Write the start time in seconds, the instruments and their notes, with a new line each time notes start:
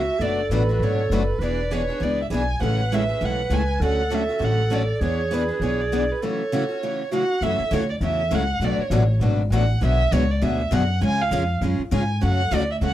Already playing: clarinet F#4, violin E5
0.19 upright bass F#1, steel-string acoustic guitar B2 F#3 A3 D4 F#4 B4, clarinet A4, violin D5
0.49 upright bass A1, steel-string acoustic guitar B2 F#3 A3 D4 F#4 B4, violin B4
0.69 steel-string acoustic guitar A3 D4 F#4
0.79 upright bass G#1, steel-string acoustic guitar B2 F#3 A3 D4, violin C#5
0.84 steel-string acoustic guitar F#4 B4
1.10 upright bass F#1, steel-string acoustic guitar B2 F#3 A3 D4 F#4 B4, violin B4
1.39 upright bass E1, steel-string acoustic guitar E3 B3 B4, clarinet B4, violin D5
1.43 steel-string acoustic guitar D4 G#4
1.72 steel-string acoustic guitar E3 B3 D4 G#4 B4, violin C#5
1.89 steel-string acoustic guitar B3 D4 G#4
2.01 upright bass C#2, steel-string acoustic guitar E3 B3 D4 G#4 B4, violin D5
2.22 violin E5
2.30 upright bass B1, steel-string acoustic guitar E3 B3 D4 B4, violin G#5
2.34 steel-string acoustic guitar G#4
2.60 upright bass A1, steel-string acoustic guitar C#3 E3 G#3 A3 C#4 E4 G#4 A4, clarinet B4, violin F#5
2.92 steel-string acoustic guitar C#3 E3 G#3 A3 C#4 E4 G#4 A4, violin E5
3.09 steel-string acoustic guitar A3 C#4 G#4
3.21 upright bass B1, steel-string acoustic guitar C#3 E3 G#3 A3 C#4 E4 G#4 A4, violin F#5
3.50 upright bass C#2, steel-string acoustic guitar C#3 E3 G#3 A3 C#4 E4 G#4 A4, violin G#5
3.80 upright bass D2, steel-string acoustic guitar D3 F#3 A3 C#4 F#4 A4, clarinet A4
3.84 violin F#5
4.12 steel-string acoustic guitar D3 F#3 A3 C#4 F#4 A4, violin E5
4.29 steel-string acoustic guitar A3 C#4 F#4
4.40 upright bass A1, steel-string acoustic guitar D3 F#3 A3 C#4 F#4 A4
4.44 violin F#5
4.71 steel-string acoustic guitar D3 F#3 A3 C#4 F#4 A4, violin D5
5.00 upright bass E2, steel-string acoustic guitar E3 B3 D4 G#4 B4, clarinet G#4, violin C#5
5.32 steel-string acoustic guitar E3 B3 D4 G#4 B4, violin B4
5.48 steel-string acoustic guitar B3 D4 G#4
5.60 upright bass B1, steel-string acoustic guitar E3 B3 D4 G#4 B4, violin C#5
5.81 violin D5
5.93 steel-string acoustic guitar E3 B3 D4 G#4 B4
6.11 violin B4
6.22 steel-string acoustic guitar C#3 E3 F#3 A3 C#4 E4 F#4, clarinet A4, violin C#5
6.52 steel-string acoustic guitar C#3 E3 F#3 A3 C#4 E4 F#4
6.69 steel-string acoustic guitar A3 C#4 F#4
6.83 steel-string acoustic guitar C#3 E3 F#3 A3 C#4 E4 F#4
7.11 steel-string acoustic guitar C#3 E3 F#3 A3 C#4 E4 F#4, clarinet F#4, violin F#5
7.41 upright bass F#2, steel-string acoustic guitar C#3 E3 F#3 A3 C#4 E4 F#4 A4, violin E5
7.59 muted upright bass stroke
7.71 upright bass D2, steel-string acoustic guitar C#3 E3 F#3 A3 C#4 E4 F#4 A4, violin C#5
7.90 violin D5
8.01 upright bass E2, steel-string acoustic guitar C#3 E3 F#3 A3 C#4 E4 F#4 A4, violin E5
8.31 upright bass C#2, steel-string acoustic guitar C#3 E3 F#3 A3 C#4 E4 F#4 A4, violin F#5
8.60 upright bass B1, steel-string acoustic guitar B2 F#3 A3 D4 F#4 B4
8.64 violin D5
8.78 violin C#5, muted upright bass stroke
8.90 upright bass A1, steel-string acoustic guitar B2 F#3 A3 D4 F#4 B4
9.20 upright bass G#1, steel-string acoustic guitar B2 F#3 A3 D4 F#4 B4
9.50 upright bass A1, steel-string acoustic guitar B2 F#3 A3 D4 F#4 B4, violin F#5
9.81 upright bass B1, steel-string acoustic guitar B2 D3 F#3 B3 F#4 G#4
9.85 violin E5
10.11 upright bass C#2, steel-string acoustic guitar B2 D3 F#3 B3 F#4 G#4, violin C#5
10.31 violin D5
10.41 upright bass D2, steel-string acoustic guitar B2 D3 F#3 B3 F#4 G#4, violin E5
10.71 upright bass F#2, steel-string acoustic guitar B2 D3 F#3 B3 F#4 G#4, violin F#5
11.01 upright bass C#2, steel-string acoustic guitar C#3 G#3 C#4 F4 G#4, violin G#5
11.22 violin F5
11.31 upright bass F2, steel-string acoustic guitar C#3 G#3 C#4 F4 G#4
11.61 upright bass F#2, steel-string acoustic guitar C#3 G#3 C#4 F4 G#4
11.79 muted upright bass stroke
11.91 upright bass G#2, steel-string acoustic guitar C#3 G#3 C#4 F4 G#4, violin G#5
12.22 upright bass F#2, steel-string acoustic guitar C#3 F#3 A3 C#4 F#4 A4, violin F#5
12.51 upright bass D2, steel-string acoustic guitar C#3 F#3 A3 C#4 F#4 A4, violin D5
12.71 violin E5
12.81 upright bass C#2, steel-string acoustic guitar C#3 F#3 A3 C#4 F#4 A4, violin F#5